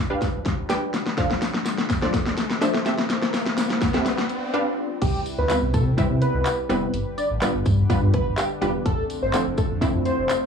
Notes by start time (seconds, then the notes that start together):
Already playing: F3 G3 D4 G4 B4, riser
0.10 D4 G4 B4 F5
0.22 kick, snare, closed hi-hat, tambourine
0.45 kick, snare, closed hi-hat, tambourine
0.69 D4 G4 B4 G5, snare, closed hi-hat, tambourine
0.94 snare, closed hi-hat, tambourine
1.06 snare
1.17 F3 C4 D4 A4 C5 F5, kick, snare, closed hi-hat, tambourine
1.30 snare
1.42 snare, closed hi-hat, tambourine
1.54 snare
1.66 snare, closed hi-hat, tambourine
1.78 snare
1.90 kick, snare, closed hi-hat, tambourine
2.02 F3 D4 A4 C5 D5, snare
2.14 kick, snare, closed hi-hat, tambourine
2.26 snare
2.37 snare, closed hi-hat, tambourine
2.50 snare
2.61 F3 D4 A4 C5 E5, snare, closed hi-hat, tambourine
2.74 snare
2.86 G3 C4 E4 G4 A4 E5, snare, closed hi-hat, tambourine
2.98 snare
3.10 snare, closed hi-hat, tambourine
3.22 snare
3.34 snare, closed hi-hat, tambourine
3.46 snare
3.58 snare, closed hi-hat, tambourine
3.70 snare
3.81 kick, snare, closed hi-hat, tambourine
3.94 C4 G4 A4 E5, snare
4.06 D4 F4 B4 D5, snare, closed hi-hat, tambourine
4.18 snare
4.29 closed hi-hat
4.54 D4 G4 B4 F5
5.01 C2 C3 G3 E4 G4 B4, kick, closed hi-hat, crash, tambourine
5.26 closed hi-hat, tambourine
5.38 D2 B4
5.50 G3 B3 C4 E4 B4, clap, closed hi-hat, tambourine
5.62 C2
5.74 C3 A4, kick, closed hi-hat, tambourine
5.97 C3 G3 C4 E4 B4 E5, kick, closed hi-hat, tambourine
6.10 C3
6.22 B4, closed hi-hat
6.34 C2
6.46 clap, closed hi-hat, tambourine
6.69 F1 G3 B3 C4 E4 B4, closed hi-hat, tambourine
6.94 G1 D3 D4 G4, closed hi-hat, tambourine
7.18 D5, closed hi-hat, tambourine
7.30 A1
7.42 G3 B3 D4 F4 B4, clap, closed hi-hat, tambourine
7.54 G1
7.65 G2, kick, closed hi-hat, tambourine
7.90 G2 G3 B3 D4 F4 B4, kick, closed hi-hat, tambourine
8.02 G2
8.14 B4, kick, closed hi-hat
8.27 G1
8.37 G4, clap, closed hi-hat, tambourine
8.61 E1 G3 B3 D4 F4 G4 B4, closed hi-hat, tambourine
8.86 F1 D3 F3 A3 C4 A4, kick, closed hi-hat
9.10 closed hi-hat, tambourine
9.22 G1 C5
9.33 F3 A3 C4 D4 A4, clap, closed hi-hat, tambourine
9.46 F1
9.57 F2 A4, kick, closed hi-hat, tambourine
9.81 F2 F3 A3 C4 D4 E4, kick, closed hi-hat, tambourine
9.95 F2
10.05 C5, closed hi-hat, tambourine
10.18 F1
10.29 clap, closed hi-hat, tambourine